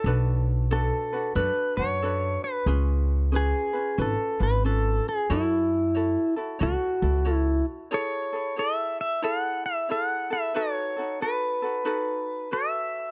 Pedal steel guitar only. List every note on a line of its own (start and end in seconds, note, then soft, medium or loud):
0.73 1.36 A4 medium
1.36 1.79 B4 medium
1.77 2.44 C#5 loud
2.44 2.66 B4 medium
3.36 4.01 G#4 loud
4.02 4.43 A4 medium
4.43 4.65 B4 loud
4.66 5.08 A4 loud
5.09 5.32 G#4 medium
5.32 6.34 E4 medium
6.63 7.35 F#4 medium
7.35 7.65 E4 medium
7.94 8.60 C#5 loud
8.59 9.00 E5 loud
9.01 9.24 E5 loud
9.24 9.65 F#5 loud
9.66 9.90 E5 medium
9.92 10.32 F#5 medium
10.33 10.56 E5 medium
10.57 11.22 C#5 loud
11.22 12.56 B4 medium
12.53 13.11 E5 medium